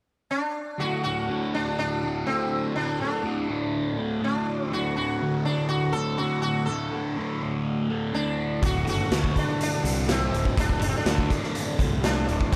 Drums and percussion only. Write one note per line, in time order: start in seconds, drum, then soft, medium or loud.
8.63 kick loud
8.63 closed hi-hat medium
8.87 closed hi-hat medium
9.12 snare medium
9.12 closed hi-hat medium
9.24 kick medium
9.36 kick medium
9.36 closed hi-hat medium
9.61 closed hi-hat medium
9.85 closed hi-hat medium
10.09 snare loud
10.09 closed hi-hat medium
10.34 closed hi-hat medium
10.45 kick medium
10.57 kick loud
10.57 closed hi-hat medium
10.69 kick medium
10.82 closed hi-hat medium
11.06 snare loud
11.06 closed hi-hat medium
11.18 kick medium
11.30 kick medium
11.30 snare soft
11.30 closed hi-hat medium
11.44 snare soft
11.55 closed hi-hat medium
11.79 kick medium
11.79 closed hi-hat medium
12.04 snare loud
12.04 closed hi-hat medium
12.29 closed hi-hat medium
12.41 kick medium
12.53 kick medium